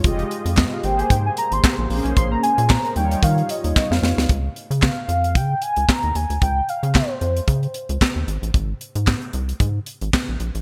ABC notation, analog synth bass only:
X:1
M:4/4
L:1/16
Q:"Swing 16ths" 1/4=113
K:Dblyd
V:1 name="Analog synth bass" clef=bass
F,,,2 z F,,2 z A,,,2 A,,2 z A,,, z B,,, B,,, =B,,, | B,,,2 z B,,2 z E,,2 E,2 z E,, z F,, F,, =D,, | D,,2 z D,2 z F,,2 D,2 z D,, z E,, E,, =D,, | D,,2 z D,2 z F,,2 D,2 z D,, z E,, A,,, =A,,, |
A,,,2 z A,,2 z C,,2 A,,2 z A,,, z B,,, B,,, =A,,, |]